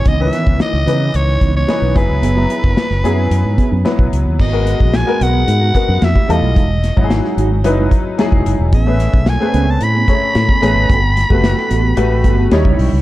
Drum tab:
CC |----------------|----------------|x---------------|----------------|
HH |x-x-x-x-x-x-x-x-|x-x-x-x-x-x-x-x-|--x-x-x-x-x-x-x-|x-x-x-x-x-x-x-x-|
SD |--o-oo------o---|----oo------o---|----oo------o---|--o-oo------o---|
BD |o--o------o---o-|---o------o--o--|o--o------o--o--|o--o------o--o--|

CC |----------------|----------------|
HH |x-x-x-x-x-x-x-x-|x-x-x-x-x-x-x-o-|
SD |--o-oo------o---|--o-oo------o---|
BD |o--o------o--o--|o--o------o--o--|